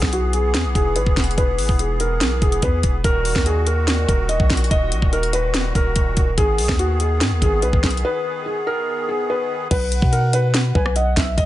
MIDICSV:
0, 0, Header, 1, 6, 480
1, 0, Start_track
1, 0, Key_signature, 5, "major"
1, 0, Tempo, 416667
1, 1586, Time_signature, 4, 2, 24, 8
1, 13196, End_track
2, 0, Start_track
2, 0, Title_t, "Soft synth lead"
2, 0, Program_c, 0, 80
2, 11186, Note_on_c, 0, 78, 112
2, 12340, Note_off_c, 0, 78, 0
2, 12387, Note_on_c, 0, 80, 78
2, 12615, Note_off_c, 0, 80, 0
2, 12628, Note_on_c, 0, 78, 92
2, 12855, Note_off_c, 0, 78, 0
2, 12865, Note_on_c, 0, 76, 90
2, 13094, Note_off_c, 0, 76, 0
2, 13196, End_track
3, 0, Start_track
3, 0, Title_t, "Felt piano"
3, 0, Program_c, 1, 0
3, 0, Note_on_c, 1, 68, 97
3, 118, Note_off_c, 1, 68, 0
3, 150, Note_on_c, 1, 66, 83
3, 350, Note_off_c, 1, 66, 0
3, 391, Note_on_c, 1, 68, 77
3, 840, Note_off_c, 1, 68, 0
3, 868, Note_on_c, 1, 68, 91
3, 1068, Note_off_c, 1, 68, 0
3, 1108, Note_on_c, 1, 71, 85
3, 1559, Note_off_c, 1, 71, 0
3, 1589, Note_on_c, 1, 71, 101
3, 2039, Note_off_c, 1, 71, 0
3, 2071, Note_on_c, 1, 68, 75
3, 2270, Note_off_c, 1, 68, 0
3, 2309, Note_on_c, 1, 70, 85
3, 2759, Note_off_c, 1, 70, 0
3, 2786, Note_on_c, 1, 68, 73
3, 2987, Note_off_c, 1, 68, 0
3, 3031, Note_on_c, 1, 71, 84
3, 3480, Note_off_c, 1, 71, 0
3, 3507, Note_on_c, 1, 70, 104
3, 3958, Note_off_c, 1, 70, 0
3, 3987, Note_on_c, 1, 68, 88
3, 4188, Note_off_c, 1, 68, 0
3, 4225, Note_on_c, 1, 70, 78
3, 4677, Note_off_c, 1, 70, 0
3, 4705, Note_on_c, 1, 70, 80
3, 4907, Note_off_c, 1, 70, 0
3, 4941, Note_on_c, 1, 75, 82
3, 5395, Note_off_c, 1, 75, 0
3, 5424, Note_on_c, 1, 75, 106
3, 5876, Note_off_c, 1, 75, 0
3, 5907, Note_on_c, 1, 70, 84
3, 6108, Note_off_c, 1, 70, 0
3, 6143, Note_on_c, 1, 71, 84
3, 6596, Note_off_c, 1, 71, 0
3, 6632, Note_on_c, 1, 70, 86
3, 7306, Note_off_c, 1, 70, 0
3, 7347, Note_on_c, 1, 68, 107
3, 7798, Note_off_c, 1, 68, 0
3, 7825, Note_on_c, 1, 66, 91
3, 8027, Note_off_c, 1, 66, 0
3, 8066, Note_on_c, 1, 68, 85
3, 8518, Note_off_c, 1, 68, 0
3, 8549, Note_on_c, 1, 68, 86
3, 8749, Note_off_c, 1, 68, 0
3, 8786, Note_on_c, 1, 71, 78
3, 9238, Note_off_c, 1, 71, 0
3, 9269, Note_on_c, 1, 71, 97
3, 9719, Note_off_c, 1, 71, 0
3, 9745, Note_on_c, 1, 68, 80
3, 9947, Note_off_c, 1, 68, 0
3, 9986, Note_on_c, 1, 70, 91
3, 10437, Note_off_c, 1, 70, 0
3, 10468, Note_on_c, 1, 68, 81
3, 10668, Note_off_c, 1, 68, 0
3, 10711, Note_on_c, 1, 71, 78
3, 11160, Note_off_c, 1, 71, 0
3, 11184, Note_on_c, 1, 71, 104
3, 11637, Note_off_c, 1, 71, 0
3, 11663, Note_on_c, 1, 70, 83
3, 11866, Note_off_c, 1, 70, 0
3, 11907, Note_on_c, 1, 71, 81
3, 12358, Note_off_c, 1, 71, 0
3, 12384, Note_on_c, 1, 71, 77
3, 12586, Note_off_c, 1, 71, 0
3, 12625, Note_on_c, 1, 75, 79
3, 13077, Note_off_c, 1, 75, 0
3, 13104, Note_on_c, 1, 75, 105
3, 13196, Note_off_c, 1, 75, 0
3, 13196, End_track
4, 0, Start_track
4, 0, Title_t, "Accordion"
4, 0, Program_c, 2, 21
4, 0, Note_on_c, 2, 52, 79
4, 0, Note_on_c, 2, 59, 72
4, 0, Note_on_c, 2, 68, 88
4, 3461, Note_off_c, 2, 59, 0
4, 3469, Note_off_c, 2, 52, 0
4, 3469, Note_off_c, 2, 68, 0
4, 3506, Note_on_c, 2, 46, 69
4, 3507, Note_on_c, 2, 51, 76
4, 3507, Note_on_c, 2, 66, 89
4, 7308, Note_off_c, 2, 46, 0
4, 7309, Note_off_c, 2, 66, 0
4, 7347, Note_on_c, 2, 68, 88
4, 7348, Note_on_c, 2, 59, 72
4, 11141, Note_off_c, 2, 51, 0
4, 11148, Note_off_c, 2, 68, 0
4, 11149, Note_off_c, 2, 59, 0
4, 13196, End_track
5, 0, Start_track
5, 0, Title_t, "808-style bass"
5, 0, Program_c, 3, 38
5, 26, Note_on_c, 3, 35, 111
5, 627, Note_on_c, 3, 40, 99
5, 644, Note_off_c, 3, 35, 0
5, 746, Note_on_c, 3, 35, 98
5, 764, Note_off_c, 3, 40, 0
5, 861, Note_off_c, 3, 35, 0
5, 867, Note_on_c, 3, 28, 109
5, 1106, Note_on_c, 3, 32, 100
5, 1124, Note_off_c, 3, 28, 0
5, 1221, Note_off_c, 3, 32, 0
5, 1227, Note_on_c, 3, 28, 103
5, 1572, Note_off_c, 3, 28, 0
5, 1587, Note_on_c, 3, 28, 101
5, 1827, Note_on_c, 3, 32, 99
5, 1844, Note_off_c, 3, 28, 0
5, 1941, Note_off_c, 3, 32, 0
5, 1946, Note_on_c, 3, 28, 113
5, 2547, Note_on_c, 3, 35, 95
5, 2564, Note_off_c, 3, 28, 0
5, 2775, Note_off_c, 3, 35, 0
5, 2786, Note_on_c, 3, 28, 107
5, 3017, Note_off_c, 3, 28, 0
5, 3026, Note_on_c, 3, 40, 111
5, 3257, Note_off_c, 3, 40, 0
5, 3267, Note_on_c, 3, 28, 108
5, 3497, Note_off_c, 3, 28, 0
5, 3507, Note_on_c, 3, 27, 107
5, 3852, Note_off_c, 3, 27, 0
5, 3866, Note_on_c, 3, 39, 105
5, 4673, Note_off_c, 3, 39, 0
5, 4706, Note_on_c, 3, 27, 107
5, 5052, Note_off_c, 3, 27, 0
5, 5067, Note_on_c, 3, 34, 101
5, 5412, Note_off_c, 3, 34, 0
5, 5427, Note_on_c, 3, 27, 104
5, 5666, Note_on_c, 3, 34, 99
5, 5684, Note_off_c, 3, 27, 0
5, 5781, Note_off_c, 3, 34, 0
5, 5786, Note_on_c, 3, 27, 101
5, 6593, Note_off_c, 3, 27, 0
5, 6626, Note_on_c, 3, 27, 108
5, 6857, Note_off_c, 3, 27, 0
5, 6866, Note_on_c, 3, 27, 106
5, 7097, Note_off_c, 3, 27, 0
5, 7108, Note_on_c, 3, 27, 107
5, 7338, Note_off_c, 3, 27, 0
5, 7347, Note_on_c, 3, 32, 100
5, 7587, Note_on_c, 3, 35, 97
5, 7604, Note_off_c, 3, 32, 0
5, 7701, Note_off_c, 3, 35, 0
5, 7706, Note_on_c, 3, 39, 105
5, 8307, Note_on_c, 3, 44, 97
5, 8324, Note_off_c, 3, 39, 0
5, 8427, Note_on_c, 3, 39, 103
5, 8444, Note_off_c, 3, 44, 0
5, 8541, Note_off_c, 3, 39, 0
5, 8547, Note_on_c, 3, 32, 108
5, 8786, Note_on_c, 3, 35, 100
5, 8804, Note_off_c, 3, 32, 0
5, 8901, Note_off_c, 3, 35, 0
5, 8906, Note_on_c, 3, 32, 103
5, 9022, Note_off_c, 3, 32, 0
5, 9028, Note_on_c, 3, 35, 106
5, 9257, Note_off_c, 3, 35, 0
5, 11187, Note_on_c, 3, 35, 111
5, 11532, Note_off_c, 3, 35, 0
5, 11547, Note_on_c, 3, 47, 105
5, 12353, Note_off_c, 3, 47, 0
5, 12387, Note_on_c, 3, 35, 112
5, 12847, Note_off_c, 3, 35, 0
5, 12867, Note_on_c, 3, 35, 109
5, 13097, Note_off_c, 3, 35, 0
5, 13106, Note_on_c, 3, 35, 101
5, 13196, Note_off_c, 3, 35, 0
5, 13196, End_track
6, 0, Start_track
6, 0, Title_t, "Drums"
6, 26, Note_on_c, 9, 36, 100
6, 26, Note_on_c, 9, 38, 76
6, 142, Note_off_c, 9, 36, 0
6, 142, Note_off_c, 9, 38, 0
6, 146, Note_on_c, 9, 42, 79
6, 261, Note_off_c, 9, 42, 0
6, 383, Note_on_c, 9, 42, 90
6, 498, Note_off_c, 9, 42, 0
6, 626, Note_on_c, 9, 38, 105
6, 630, Note_on_c, 9, 42, 90
6, 741, Note_off_c, 9, 38, 0
6, 745, Note_off_c, 9, 42, 0
6, 867, Note_on_c, 9, 36, 101
6, 870, Note_on_c, 9, 42, 75
6, 982, Note_off_c, 9, 36, 0
6, 985, Note_off_c, 9, 42, 0
6, 1102, Note_on_c, 9, 42, 89
6, 1217, Note_off_c, 9, 42, 0
6, 1227, Note_on_c, 9, 36, 96
6, 1342, Note_off_c, 9, 36, 0
6, 1347, Note_on_c, 9, 38, 93
6, 1347, Note_on_c, 9, 42, 62
6, 1348, Note_on_c, 9, 36, 96
6, 1427, Note_off_c, 9, 42, 0
6, 1427, Note_on_c, 9, 42, 64
6, 1462, Note_off_c, 9, 38, 0
6, 1463, Note_off_c, 9, 36, 0
6, 1507, Note_off_c, 9, 42, 0
6, 1507, Note_on_c, 9, 42, 64
6, 1587, Note_off_c, 9, 42, 0
6, 1587, Note_on_c, 9, 36, 114
6, 1587, Note_on_c, 9, 42, 84
6, 1702, Note_off_c, 9, 36, 0
6, 1702, Note_off_c, 9, 42, 0
6, 1826, Note_on_c, 9, 46, 91
6, 1941, Note_off_c, 9, 46, 0
6, 1946, Note_on_c, 9, 36, 97
6, 2061, Note_off_c, 9, 36, 0
6, 2066, Note_on_c, 9, 42, 77
6, 2181, Note_off_c, 9, 42, 0
6, 2303, Note_on_c, 9, 42, 94
6, 2418, Note_off_c, 9, 42, 0
6, 2545, Note_on_c, 9, 38, 110
6, 2549, Note_on_c, 9, 42, 87
6, 2660, Note_off_c, 9, 38, 0
6, 2664, Note_off_c, 9, 42, 0
6, 2786, Note_on_c, 9, 36, 104
6, 2786, Note_on_c, 9, 42, 44
6, 2901, Note_off_c, 9, 36, 0
6, 2901, Note_off_c, 9, 42, 0
6, 2906, Note_on_c, 9, 42, 75
6, 3021, Note_off_c, 9, 42, 0
6, 3022, Note_on_c, 9, 42, 86
6, 3026, Note_on_c, 9, 36, 98
6, 3137, Note_off_c, 9, 42, 0
6, 3141, Note_off_c, 9, 36, 0
6, 3264, Note_on_c, 9, 42, 83
6, 3267, Note_on_c, 9, 36, 97
6, 3380, Note_off_c, 9, 42, 0
6, 3382, Note_off_c, 9, 36, 0
6, 3506, Note_on_c, 9, 36, 113
6, 3507, Note_on_c, 9, 42, 85
6, 3622, Note_off_c, 9, 36, 0
6, 3622, Note_off_c, 9, 42, 0
6, 3745, Note_on_c, 9, 46, 89
6, 3861, Note_off_c, 9, 46, 0
6, 3866, Note_on_c, 9, 36, 97
6, 3866, Note_on_c, 9, 38, 76
6, 3981, Note_off_c, 9, 36, 0
6, 3981, Note_off_c, 9, 38, 0
6, 3985, Note_on_c, 9, 42, 76
6, 4101, Note_off_c, 9, 42, 0
6, 4223, Note_on_c, 9, 42, 95
6, 4338, Note_off_c, 9, 42, 0
6, 4466, Note_on_c, 9, 38, 105
6, 4469, Note_on_c, 9, 42, 90
6, 4581, Note_off_c, 9, 38, 0
6, 4584, Note_off_c, 9, 42, 0
6, 4706, Note_on_c, 9, 36, 99
6, 4710, Note_on_c, 9, 42, 76
6, 4822, Note_off_c, 9, 36, 0
6, 4825, Note_off_c, 9, 42, 0
6, 4942, Note_on_c, 9, 42, 87
6, 5058, Note_off_c, 9, 42, 0
6, 5067, Note_on_c, 9, 36, 99
6, 5182, Note_off_c, 9, 36, 0
6, 5187, Note_on_c, 9, 38, 92
6, 5187, Note_on_c, 9, 42, 66
6, 5188, Note_on_c, 9, 36, 102
6, 5267, Note_off_c, 9, 42, 0
6, 5267, Note_on_c, 9, 42, 64
6, 5302, Note_off_c, 9, 38, 0
6, 5303, Note_off_c, 9, 36, 0
6, 5346, Note_off_c, 9, 42, 0
6, 5346, Note_on_c, 9, 42, 68
6, 5427, Note_off_c, 9, 42, 0
6, 5427, Note_on_c, 9, 36, 114
6, 5427, Note_on_c, 9, 42, 85
6, 5542, Note_off_c, 9, 36, 0
6, 5542, Note_off_c, 9, 42, 0
6, 5666, Note_on_c, 9, 42, 87
6, 5781, Note_off_c, 9, 42, 0
6, 5786, Note_on_c, 9, 36, 100
6, 5902, Note_off_c, 9, 36, 0
6, 5907, Note_on_c, 9, 42, 64
6, 6022, Note_off_c, 9, 42, 0
6, 6027, Note_on_c, 9, 42, 68
6, 6142, Note_off_c, 9, 42, 0
6, 6143, Note_on_c, 9, 42, 96
6, 6258, Note_off_c, 9, 42, 0
6, 6386, Note_on_c, 9, 38, 103
6, 6389, Note_on_c, 9, 42, 87
6, 6501, Note_off_c, 9, 38, 0
6, 6504, Note_off_c, 9, 42, 0
6, 6626, Note_on_c, 9, 36, 96
6, 6629, Note_on_c, 9, 42, 67
6, 6742, Note_off_c, 9, 36, 0
6, 6745, Note_off_c, 9, 42, 0
6, 6862, Note_on_c, 9, 42, 86
6, 6866, Note_on_c, 9, 36, 95
6, 6977, Note_off_c, 9, 42, 0
6, 6981, Note_off_c, 9, 36, 0
6, 7104, Note_on_c, 9, 42, 83
6, 7107, Note_on_c, 9, 36, 101
6, 7219, Note_off_c, 9, 42, 0
6, 7223, Note_off_c, 9, 36, 0
6, 7347, Note_on_c, 9, 36, 113
6, 7347, Note_on_c, 9, 42, 85
6, 7462, Note_off_c, 9, 36, 0
6, 7462, Note_off_c, 9, 42, 0
6, 7585, Note_on_c, 9, 46, 92
6, 7701, Note_off_c, 9, 46, 0
6, 7706, Note_on_c, 9, 36, 103
6, 7706, Note_on_c, 9, 38, 75
6, 7821, Note_off_c, 9, 36, 0
6, 7821, Note_off_c, 9, 38, 0
6, 7825, Note_on_c, 9, 42, 75
6, 7940, Note_off_c, 9, 42, 0
6, 8063, Note_on_c, 9, 42, 92
6, 8178, Note_off_c, 9, 42, 0
6, 8305, Note_on_c, 9, 38, 105
6, 8309, Note_on_c, 9, 42, 86
6, 8421, Note_off_c, 9, 38, 0
6, 8424, Note_off_c, 9, 42, 0
6, 8546, Note_on_c, 9, 36, 100
6, 8550, Note_on_c, 9, 42, 75
6, 8662, Note_off_c, 9, 36, 0
6, 8665, Note_off_c, 9, 42, 0
6, 8782, Note_on_c, 9, 42, 85
6, 8897, Note_off_c, 9, 42, 0
6, 8907, Note_on_c, 9, 36, 98
6, 9022, Note_off_c, 9, 36, 0
6, 9026, Note_on_c, 9, 38, 93
6, 9026, Note_on_c, 9, 42, 64
6, 9027, Note_on_c, 9, 36, 96
6, 9106, Note_off_c, 9, 42, 0
6, 9106, Note_on_c, 9, 42, 64
6, 9141, Note_off_c, 9, 38, 0
6, 9143, Note_off_c, 9, 36, 0
6, 9186, Note_off_c, 9, 42, 0
6, 9186, Note_on_c, 9, 42, 65
6, 9301, Note_off_c, 9, 42, 0
6, 11186, Note_on_c, 9, 36, 118
6, 11186, Note_on_c, 9, 49, 103
6, 11187, Note_on_c, 9, 42, 87
6, 11302, Note_off_c, 9, 36, 0
6, 11302, Note_off_c, 9, 42, 0
6, 11302, Note_off_c, 9, 49, 0
6, 11426, Note_on_c, 9, 42, 87
6, 11541, Note_off_c, 9, 42, 0
6, 11546, Note_on_c, 9, 36, 103
6, 11661, Note_off_c, 9, 36, 0
6, 11666, Note_on_c, 9, 42, 84
6, 11781, Note_off_c, 9, 42, 0
6, 11903, Note_on_c, 9, 42, 89
6, 12018, Note_off_c, 9, 42, 0
6, 12146, Note_on_c, 9, 38, 115
6, 12149, Note_on_c, 9, 42, 83
6, 12261, Note_off_c, 9, 38, 0
6, 12265, Note_off_c, 9, 42, 0
6, 12387, Note_on_c, 9, 36, 101
6, 12502, Note_off_c, 9, 36, 0
6, 12507, Note_on_c, 9, 37, 96
6, 12622, Note_off_c, 9, 37, 0
6, 12623, Note_on_c, 9, 42, 83
6, 12738, Note_off_c, 9, 42, 0
6, 12865, Note_on_c, 9, 42, 80
6, 12866, Note_on_c, 9, 38, 96
6, 12867, Note_on_c, 9, 36, 102
6, 12980, Note_off_c, 9, 42, 0
6, 12982, Note_off_c, 9, 38, 0
6, 12983, Note_off_c, 9, 36, 0
6, 13106, Note_on_c, 9, 36, 121
6, 13107, Note_on_c, 9, 42, 87
6, 13196, Note_off_c, 9, 36, 0
6, 13196, Note_off_c, 9, 42, 0
6, 13196, End_track
0, 0, End_of_file